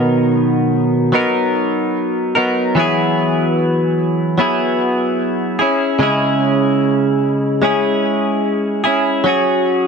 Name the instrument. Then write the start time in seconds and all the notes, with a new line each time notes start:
clean electric guitar
Already playing: B2 D#3 F#3 B3 D#4 A#4
1.12 F#3 B3 D#4 A#4
2.35 F#3 B3 D#4 A#4
2.75 E3 F#3 B3 E4
2.80 G#4
4.38 F#3 B3 E4 G#4
5.59 C#4 E4 G#4
5.99 C#3 G#3 C#4 E4
6.03 G#4
7.62 G#3 C#4 E4 G#4
8.84 C#4 E4 G#4
9.24 F#3 C#4 F#4
9.29 G#4